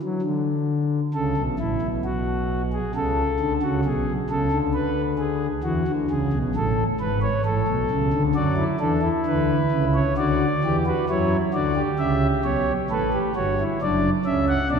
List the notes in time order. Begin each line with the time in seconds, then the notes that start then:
0.02 F#3
0.22 D3
1.14 C#2 C#3 A4
1.36 B1 B2
1.59 A1 A2 E4
1.81 B1 B2
2.05 F#4
2.73 G#4
2.95 C#2 C#3 A4
3.40 D2 D3
3.62 C#2 C#3 F#4
3.85 B1 B2 G#4
4.29 C#2 C#3 A4
4.52 D2 D3
4.73 B4
5.18 G#4
5.63 E2 E3 F#4
5.88 D2 D3
6.10 C#2 C#3 G#4
6.33 B1 B2
6.55 A1 A2 A4
7.00 G#1 G#2 B4
7.22 C#5
7.45 A1 A2 A4
7.67 B1 B2
7.90 C#2 C#3
8.13 D2 D3
8.35 F#2 F#3 F#4 D5
8.57 E4
8.80 E2 E3 D4 A4
9.02 E4
9.26 D2 D3 B4
9.71 C#2 C#3
9.95 C#5
10.17 D2 D3 F#4 D5
10.64 E2 E3 G4
10.86 F#4 B4
11.09 F#2 F#3 E4 C#5
11.54 D2 D3 F#4 D5
11.76 G4
11.99 C#2 C#3 E5
12.44 B1 B2 C#5
12.90 A1 A2 A4 B4
13.13 G4
13.35 G1 G2 F#4 C#5
13.60 E4
13.82 F#1 F#2 D4 D5
14.25 C#2 C#3 C#4 E5
14.48 F#5
14.70 B1 B2 D4 D5